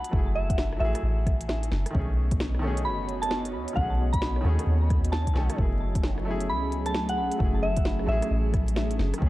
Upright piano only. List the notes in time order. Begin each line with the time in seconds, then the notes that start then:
Already playing: F#3 A3 E4 G#4
0.09 F#3 A3
0.14 E4 G#4
0.77 F#3 A3
0.82 E4 G#4
1.90 D#3 A3
1.96 C#4 G#4
2.59 D#3 A3
2.64 C#4 G#4
3.73 D#3 A3
3.78 C#4 G#4
4.41 D#3 A3
4.46 C#4 G#4
5.33 D#3 A3 C#4
5.38 A4
5.54 F#3 A3
5.59 E4 G#4
6.22 F#3 A3
6.28 E4 G#4
7.36 F#3 A3
7.41 E4 G#4
8.04 F#3 A3
8.09 E4 G#4
9.18 D#3 A3
9.23 C#4 G#4